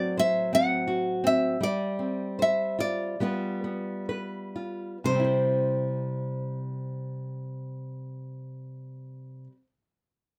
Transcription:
nylon-string guitar
Already playing: A2 F#3 C4 F#4 D5
0.17 C5 E5
0.53 C4 F#5
0.87 F#4
1.24 C4 E5
1.60 G3 D5
1.99 C4
2.39 C5 E5
2.79 F4 D5
3.20 G3 B3 F4 B4
3.64 B3
4.09 B4
4.56 F4
5.04 C3 C5
5.09 G3
5.14 C4
5.20 E4
5.24 C5

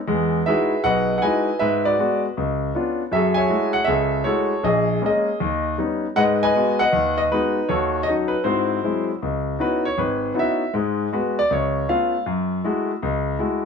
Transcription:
grand piano
0.07 E2 G#3
0.46 G#3 D#4 E4 F#4 G#4 B4 E5
0.84 B1 B4 D#5 F#5
1.18 F#5
1.22 G#3 D#4 E4 F#4 B4 D#5 G#5
1.59 G#2 B4 E5
1.85 F#4 B4 D5
1.99 G#3 B3 F#4
2.37 C#2
2.75 B3 C#4 D4 F4
3.11 F#2 F#3 G#4 A4 E5
3.34 C#5 E5 G#5
3.49 G#3 A3 E4 F#4
3.73 F#5
3.84 C#2 G#4 A4 E5
4.24 G#3 A3 E4 F#4 A4 C#5
4.63 A#1 G#4 D#5
5.02 G#3 A#3 C#4
5.06 G#4 D#5
5.40 D#2
5.78 G3 B3 C#4 D#4
6.16 G#2 G#3 B4 D#5 F#5
6.43 B4 D#5 G#5
6.55 G#3 B3 F#4
6.79 B4 D#5 F#5
6.93 D#2
7.18 D#5
7.32 G#3 B3 D#4 F#4 B4
7.69 D#2 F#4 A4 C#5
8.03 D#5
8.08 F#3 C#4 D#4
8.28 B4
8.44 G#2 C4 E4 F#4 C5
8.84 F#3 G#3 C4 E4
9.22 C#2
9.59 B3 C#4 D#4 E4 F#4 B4
9.85 C#5
9.98 G#1 B4
10.34 B3 C#4 D#4 E4 F#4
10.39 E5
10.74 G#2 G#3
11.12 G#3 B3 F#4 B4
11.39 D5
11.50 C#2 C#5
11.88 A3 B3 C#4 F4 F5
12.26 F#2
12.64 G#3 A3 E4 F#4
13.02 C#2
13.39 G#3 A3 E4 F#4

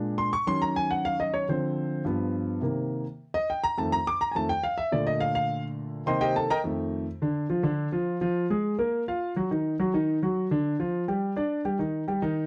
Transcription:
grand piano
Already playing: A#2 G#3 D4
0.18 C6
0.33 C#6
0.47 D#3 F#3 C#4 C6
0.62 A#5
0.76 G#5
0.91 F#5
1.05 F5
1.20 D#5
1.34 C#5
1.49 D3 F3 C4 C5
2.05 G2 F3 B3
2.61 C3 D#3 A#3
3.34 D#5
3.50 G5
3.63 A#5
3.78 F2 D#3 A3 A5
3.92 A#5
4.07 D6
4.21 A#5
4.31 F2 G#5
4.36 D#3 A3 A5
4.49 G5
4.63 F5
4.78 E5
4.92 A#2 D3 A3 D5
5.07 D#5
5.20 F5
5.35 F5
6.06 C3 D#3 A#3 C5 D#5 G5 C6
6.21 G4 C5 D#5 G5
6.36 A4 A5
6.50 A#4 D#5 G5 A#5
6.64 F2 D#3 A3
7.22 D3 D4
7.50 F3 F4
7.63 D3 D4
7.92 F3 F4
8.21 F3 F4
8.50 G#3 G#4
8.79 A#3 A#4
9.08 F4 F5
9.36 F#3 F#4
9.51 D#3 D#4
9.80 F#3 F#4
9.94 D#3 D#4
10.23 F#3 F#4
10.51 D3 D4
10.80 F3 F4
11.08 G3 G4
11.36 D4 D5
11.65 G3 G4
11.79 D#3 D#4
12.08 G3 G4
12.22 D#3 D#4

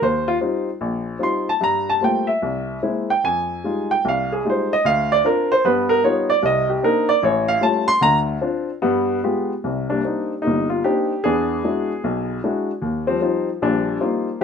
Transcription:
grand piano
0.02 D#2 C5
0.28 F4
0.41 G3 C4 D#4
0.81 A#1
1.19 G3 C4 D#4 F4
1.23 C6
1.49 A5
1.61 G2 A#5
1.89 A5
2.01 G3 A3 A#3 C4 F4 G5
2.27 E5
2.42 C2
2.83 G#3 A#3 C4 E4
3.10 G5
3.24 F2 G#5
3.64 G3 G#3 D#4 F4
3.91 G5
4.05 C2 F5
4.32 G#4
4.45 G3 G#3 D#4 F4
4.50 C5
4.73 D#5
4.85 D2 F5
5.12 D5
5.24 C4 D4 F4 A#4
5.52 C5
5.65 G2 B3 B4
5.89 A#4
6.03 G3 B3 D#4 F4 C#5
6.30 D5
6.42 C2 C3 D#5
6.70 G4
6.83 A#3 C4 D4 D#4 A#4
7.09 D5
7.23 A1 C#5
7.48 F5
7.61 G3 A3 C#4 F4 A5
7.88 C6
8.01 D2 D3 A#5
8.41 C4 D4 F4
8.82 G2 B3
9.24 G#3 B3 F4 G4
9.64 C2 C3
9.90 G3 A#3 D4
10.04 A#3 C4 D4 D#4
10.42 G3 A#3 D#4
10.47 G1
10.70 F4
10.84 A#3 C4 D4 D#4 G4
11.24 E2 B3 D4 G#4
11.64 G#3 D4 E4 F#4
12.04 B1
12.44 G#3 D4 E4 F#4
12.82 D#2
13.07 F3 G3 C4
13.21 G3 C4 D#4 F4
13.62 A#1 A#2 F3 G3 D4
14.00 G3 A#3 C4 D#4 F4
14.41 G2

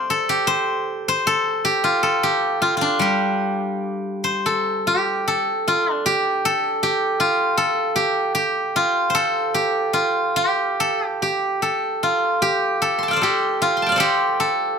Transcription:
guzheng
Already playing: A3 C4 D4 F4 G4 C5 D5 F5 G5 A5 C6
0.10 A4
0.29 G4
0.47 C5
1.08 C5
1.27 A4
1.65 G4
1.84 F4
2.03 A4
2.23 G4
2.62 F4
2.77 F4
2.81 D4
2.99 G3 G4
4.24 C5
4.46 A4
4.87 G4
5.28 A4
5.68 F4
5.93 D4
6.06 G4
6.45 A4
6.83 G4
7.20 F4
7.57 A4
7.96 G4
8.35 G4
8.76 F4
9.10 C5
9.15 A4
9.54 G4
9.93 F4
10.36 G4
10.80 A4
11.06 G4
11.22 G4
11.62 A4
12.03 F4
12.42 G4
12.82 A4
12.99 C6
13.03 A5
13.08 F5 G5
13.13 C5 D5
13.21 G4 A4
13.62 F4
13.77 C6
13.82 A5
13.86 F5 G5
13.92 D5
13.96 G4 A4 C5
14.40 A4

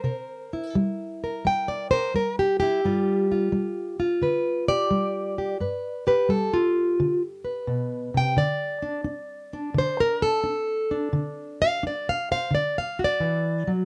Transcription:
steel-string acoustic guitar
Already playing: C5
0.04 C3 A#4
0.53 E4
0.75 G3
1.24 A#4
1.45 G3 G5
1.68 D5
1.91 A#4 C5
2.14 G3 A#4
2.39 G4
2.60 E4 G4
2.85 G2 G3 F4
3.32 F4
3.52 G3
4.00 F4
4.22 D3 B4
4.68 G4 D5
4.91 G3
5.38 G4
5.60 G2 B4
6.07 G4 B4
6.29 G3 A4
6.54 F4
7.00 D3
7.45 B4
7.67 B2
8.14 C3 G5
8.37 D3 D5
8.82 D4
9.04 D4
9.53 D4
9.74 D3 C5
10.00 A#4
10.22 A4
10.44 D4
10.91 D4
11.13 D3
11.62 F#4 F5
11.83 D4 D5
12.09 F5
12.32 C5 F5
12.51 D3 D5
12.78 F5
12.99 F#4
13.04 D5
13.20 E3
13.67 F#3

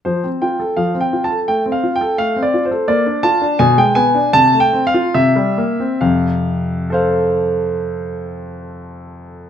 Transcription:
grand piano
0.05 F3 C5
0.24 C4
0.42 F4 G5
0.60 A4
0.77 F3 F5
0.95 C4
1.01 G5
1.13 F4
1.24 A5
1.30 A4
1.48 A3 G5
1.66 C4
1.72 F5
1.84 F4
1.96 G5
2.01 A4
2.18 A3 F5
2.36 C4
2.43 D5
2.54 F4
2.65 C5
2.71 A4
2.88 A#3 D5
3.06 D4
3.23 F4 A5
3.42 D4
3.59 B2 G#5
3.78 G#3 G5
3.95 B3 G#5
4.15 D4
4.33 C3 A5
4.54 A3
4.60 G5
4.73 C4
4.87 F5
4.94 F4
5.14 C3 E5
5.36 G3
5.58 A#3
5.80 C4
6.01 F2 C3 F5
6.90 A4 C5 F5

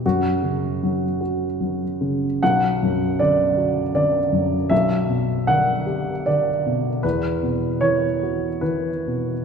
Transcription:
upright piano
0.06 F#2 F#4
0.43 C#3
0.83 F#3
1.21 F#4
1.60 F#3
2.01 C#3
2.43 B1 F#5
2.83 F#2
3.20 D3 D5
3.57 F#4
3.94 D3 D5
4.32 F#2
4.70 B1 E5
5.09 B2
5.47 D3 F#5
5.86 G4
6.26 D3 D5
6.66 B2
7.03 E2 B4
7.43 B2
7.81 E3 C#5
8.23 F#4
8.61 E3 B4
9.07 B2

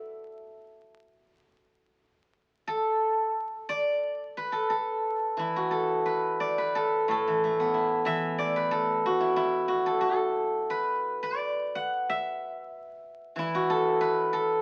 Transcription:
guzheng
Already playing: E4 F#4 A4 B4 D5 E5
2.67 A4
3.69 D5
4.37 B4
4.52 A4
4.70 A4
5.37 E3 E4
5.56 F#4
5.71 A4
6.06 B4
6.40 D5
6.58 B4
6.75 A4
7.08 A2 A4
7.27 E3
7.44 A3
7.60 B3
7.74 E4
8.05 E3 E5
8.38 D5
8.56 B4
8.71 A4
9.06 F#4
9.20 E4
9.36 E4
9.68 F#4
9.86 A4
10.01 A4
10.70 B4
11.23 D5
11.75 F#5
12.09 E5
13.36 E3 E4
13.55 F#4
13.70 A4
14.01 B4
14.33 A4

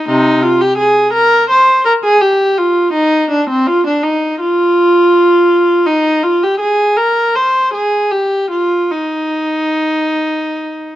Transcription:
viola
0.08 C3 D#4
0.43 F4
0.61 G4
0.78 G#4
1.13 A#4
1.50 C5
1.85 A#4
2.04 G#4
2.21 G4
2.58 F4
2.93 D#4
3.30 D4
3.50 C4
3.67 F4
3.87 D4
4.03 D#4
4.40 F4
5.86 D#4
6.23 F4
6.43 G4
6.60 G#4
6.97 A#4
7.35 C5
7.74 G#4
8.12 G4
8.51 F4
8.91 D#4

